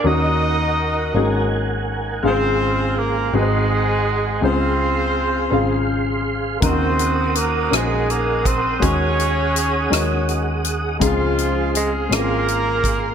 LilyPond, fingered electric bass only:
\new Staff \with { instrumentName = "Fingered electric bass" } { \clef bass \time 6/8 \key des \major \tempo 4. = 55 ees,4. aes,,4. | aes,,4. aes,,4. | des,4. aes,,4. | ees,4. bes,,4. |
ees,4. ees,4. | des,4. aes,,4. | }